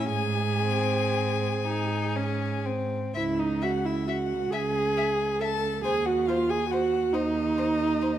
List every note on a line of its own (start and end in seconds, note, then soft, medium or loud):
0.07 1.46 G#2 medium
0.07 2.62 G#4 medium
0.07 2.63 G#5 medium
0.61 1.53 C4 medium
1.64 2.98 G#2 medium
1.64 2.17 D#4 medium
2.16 2.67 C#4 medium
2.66 3.14 C4 medium
3.14 4.36 C#2 medium
3.14 3.41 E4 medium
3.14 3.22 E5 medium
3.14 3.41 E5 medium
3.39 3.64 D#4 medium
3.39 3.65 D#5 medium
3.62 3.86 F#4 medium
3.62 3.70 E5 medium
3.62 3.88 F#5 medium
3.84 4.08 E4 medium
3.84 4.11 E5 medium
4.06 4.52 F#4 medium
4.06 4.16 E5 medium
4.06 4.55 F#5 medium
4.51 5.67 C#2 medium
4.51 5.41 G#4 medium
4.51 4.60 E5 medium
4.51 5.41 G#5 medium
4.97 5.05 E5 medium
5.39 5.83 A4 medium
5.39 5.49 E5 soft
5.39 5.83 A5 medium
5.83 6.96 D#2 medium
5.83 6.07 G#4 loud
5.83 5.92 C5 medium
5.83 6.07 G#5 medium
6.05 6.29 F#4 medium
6.05 6.27 F#5 medium
6.26 6.51 F4 medium
6.26 6.37 C5 medium
6.26 6.51 F5 medium
6.49 6.69 G#4 medium
6.49 6.72 G#5 medium
6.69 7.15 F#4 medium
6.69 6.80 C5 medium
6.69 7.15 F#5 medium
7.12 8.19 D#2 medium
7.12 8.19 D#4 loud
7.12 7.22 C5 medium
7.12 8.19 D#5 medium
7.58 7.66 C5 medium
8.02 8.10 C5 medium